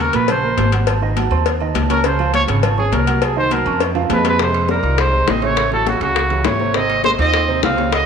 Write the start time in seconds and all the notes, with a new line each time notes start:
0.01 A#4
0.13 A#1 A#2 A#3 A#4 B4, cowbell, high conga, low agogo
0.28 C#3 C#4 C5 C#5, cowbell, high conga, low conga, low agogo
0.43 A#3 A#4 A#5, high conga
0.57 G#1, cowbell, high conga, low timbale, low agogo
0.72 F#3 F#4 F#5, cowbell, high conga
0.87 cowbell, low agogo
1.02 D#3 D#4 D#5, high conga
1.17 F#3 F#4 F#5, cowbell, high conga, low timbale, low agogo
1.31 D#2 C4 C5 C6, high conga, low agogo
1.46 cowbell, high conga
1.60 D#3 D#4 D#5, high conga, low agogo
1.74 C#2, cowbell, high conga, low timbale, low agogo
1.90 C#4 A#4 C#5 C#6, cowbell, high conga, low agogo
2.04 C#3 C#4 C5 C#5, cowbell, low agogo
2.19 F3 F4 F5, high conga, low agogo
2.34 C#5, cowbell, high conga, low timbale
2.48 G#1 C#3 C#4 C#5, cowbell, high conga, low agogo
2.63 F3 F4 F5, cowbell, high conga, low conga, low agogo
2.77 C#4 G#4 C#5 C#6, high conga, low conga
2.92 C2 A#4, cowbell, high conga, low timbale, low agogo
3.07 F#3 F#4 F#5, cowbell, high conga
3.22 G#4, cowbell, high conga, low agogo
3.36 D#3 D#4 C5 D#5, high conga
3.51 F#3 F#4 A#4 F#5, cowbell, high conga, low timbale, low agogo
3.66 F2 C#4 C#5 C#6, low agogo
3.80 cowbell, high conga, high timbale
3.95 F3 F4 F5, high conga, high timbale, low agogo
4.10 F2 G#3 B4, cowbell, high conga, low timbale, low agogo
4.24 G#3 C4 B4 C5 C6, cowbell, high conga, low timbale, low agogo
4.39 C3 G#3 C4 C5, high bongo
4.54 high timbale
4.68 C3 G3 C4 A#4 C5, high bongo, high conga, low timbale
4.83 C2 D#3 D#4 F4, high timbale
4.98 G#3 C5, high bongo, high conga, high timbale
5.12 C3 C4 C5, high conga
5.27 A1 C4 D#5, high bongo, low bongo, high conga, high timbale, low timbale
5.41 C#3 A3 C#4 C#5, high conga, high timbale
5.57 high bongo, high conga, high timbale
5.71 E3 F#3 E4 G4 A4, high bongo, high conga
5.86 C#3 F#4, high bongo, high conga, high timbale, low timbale
6.01 C#2 C#3 C#4 F#4 C#5, high bongo, high conga, high timbale
6.16 high bongo, high conga
6.30 E3 E4 G4, high bongo, high conga, high timbale
6.45 G#1 A3 C#5, high bongo, low bongo, high conga, high timbale, low timbale
6.60 C3 C4 C5, high conga
6.74 C3 C4 C5 D#5, high bongo
6.89 high conga, high timbale
7.04 C3 G#3 C4 C5, high bongo, high conga, low timbale
7.18 D#2 D#3 C4 D#4 F4 D#5, high timbale
7.34 high bongo, high conga, high timbale
7.48 C3 C4 C5, high conga
7.63 C#2 C4 F5, high bongo, low bongo, high conga, high timbale, low timbale
7.77 C#3 C#4 C#5, high conga, high timbale
7.92 B3 D#5, high bongo, high conga, high timbale